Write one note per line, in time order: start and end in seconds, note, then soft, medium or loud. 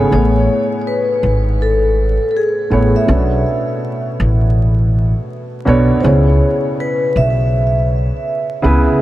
0.00 0.11 A2 medium
0.00 0.13 C#3 medium
0.00 0.12 A3 medium
0.00 0.12 B3 medium
0.00 0.10 G#4 medium
0.00 0.14 C#5 loud
0.00 0.14 G#5 medium
0.11 0.47 A1 loud
0.11 1.50 A2 medium
0.11 1.51 A3 medium
0.11 1.51 B3 medium
0.11 1.51 G#4 medium
0.11 0.80 C#5 medium
0.11 1.52 C#5 medium
0.82 0.86 C#5 medium
0.87 1.63 B4 medium
1.23 2.16 G#1 medium
1.62 2.30 A4 medium
2.31 2.35 A4 medium
2.37 2.91 G#4 medium
2.70 2.93 A1 medium
2.70 3.05 A2 medium
2.70 3.05 A3 medium
2.70 3.06 B3 medium
2.70 3.06 G#4 medium
2.70 3.07 C#5 medium
2.96 4.02 E5 medium
3.07 3.43 B1 loud
3.07 4.46 B2 medium
3.07 4.47 B3 medium
3.07 3.16 C#4 soft
3.07 4.48 A4 medium
3.07 4.48 C#5 medium
3.15 4.50 D4 medium
4.20 5.13 A1 loud
5.65 5.89 B1 medium
5.65 6.01 B2 medium
5.65 6.01 B3 medium
5.65 6.02 D4 medium
5.65 6.02 A4 medium
5.65 6.02 C#5 loud
6.01 6.39 C#2 loud
6.01 7.42 C#3 medium
6.01 7.43 B3 medium
6.01 7.43 E4 medium
6.01 7.43 G#4 medium
6.01 6.05 C5 medium
6.05 7.44 C#5 medium
6.05 6.82 C#5 medium
6.80 7.17 B4 loud
7.16 8.09 B1 medium
7.16 9.02 E5 loud
8.62 8.86 C#2 medium
8.62 8.98 C#3 medium
8.62 8.98 B3 medium
8.62 8.98 E4 medium
8.62 8.99 G#4 medium
8.62 8.99 B4 loud